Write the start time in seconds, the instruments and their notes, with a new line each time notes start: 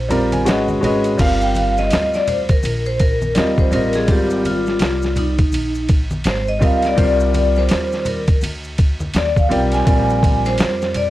Already playing: upright bass A#1, vibraphone C5
0.09 upright piano G3 C4 F4 A#4 D5 A#5, ride, low conga, maracas
0.32 upright piano G#5, ride, high conga, maracas
0.45 upright bass G#1, upright piano G#3 C#4 F#4 B4 D#5 F#5, snare, hi-hat pedal, ride, maracas
0.68 upright piano D#5, high conga, maracas
0.81 upright bass G#1, upright piano G#3 C#4 F#4 B4 D#5, ride, low conga, maracas
1.04 ride, maracas
1.17 upright bass G1, upright piano G3 C4 F4 A#4 F5, vibraphone F5, kick, crash, ride, maracas
1.41 vibraphone G5, maracas
1.55 vibraphone F5, ride, high conga, maracas
1.77 vibraphone D#5, snare, maracas
1.91 upright bass D2, snare, hi-hat pedal, ride, maracas
2.14 vibraphone D5, snare, maracas
2.27 vibraphone C5, ride, low conga, maracas
2.49 vibraphone A#4, kick, ride, maracas
2.63 upright bass A#1, ride, high conga, maracas
2.86 vibraphone C5, maracas
3.00 vibraphone A#4, kick, ride, maracas
3.22 high conga, maracas
3.35 upright bass D#2, upright piano G3 C4 F4 A#4 D#5, snare, hi-hat pedal, ride, maracas
3.58 vibraphone C5, kick, maracas
3.71 upright bass A1, upright piano G3 C4 F4 A#4 D#5, vibraphone A#4, ride, low conga, maracas
3.93 vibraphone G#4, snare, ride, maracas
4.07 upright bass G#1, upright piano G3 C4 F4 A#4 D5, vibraphone G4, kick, ride, maracas
4.30 maracas
4.45 vibraphone F4, ride, high conga, maracas
4.66 snare, maracas
4.79 upright bass C2, snare, hi-hat pedal, ride, maracas
5.02 snare, maracas
5.16 vibraphone D#4, ride, low conga, maracas
5.38 kick, ride, maracas
5.52 upright bass A#1, ride, high conga, maracas
5.75 maracas
5.89 kick, ride, maracas
6.11 high conga, maracas
6.24 upright bass G#1, vibraphone C5, snare, hi-hat pedal, ride, maracas
6.48 vibraphone D#5, maracas
6.59 upright bass C#2, upright piano G3 C4 F4 A#4 D#5, kick, ride, low conga, maracas
6.63 vibraphone F5
6.82 vibraphone D5, snare, ride, maracas
6.95 upright bass C2, upright piano G3 C4 F4 A#4 C5, kick, ride, maracas
7.05 upright piano D5
7.20 maracas
7.34 ride, high conga, maracas
7.56 vibraphone C5, snare, maracas
7.69 upright bass D#2, snare, hi-hat pedal, ride, maracas
7.92 snare, maracas
8.05 vibraphone A#4, ride, low conga, maracas
8.28 kick, ride, maracas
8.41 upright bass D2, ride, high conga, maracas
8.64 maracas
8.78 kick, ride, maracas
9.00 high conga, maracas
9.14 upright bass D#2, vibraphone D5, snare, hi-hat pedal, ride, maracas
9.36 vibraphone F5, kick, maracas
9.49 upright bass B1, upright piano G3 C4 F4 A#4 D5, vibraphone G5, ride, low conga, maracas
9.72 vibraphone G#5, snare, ride, maracas
9.85 upright bass A#1, upright piano G3 C4 F4 A#4 D5, kick, ride, maracas
10.10 maracas
10.23 kick, ride, high conga, maracas
10.45 vibraphone C5, snare, ride, maracas
10.58 upright bass F2, snare, hi-hat pedal, ride, maracas
10.82 snare, maracas
10.94 vibraphone D5, ride, low conga, maracas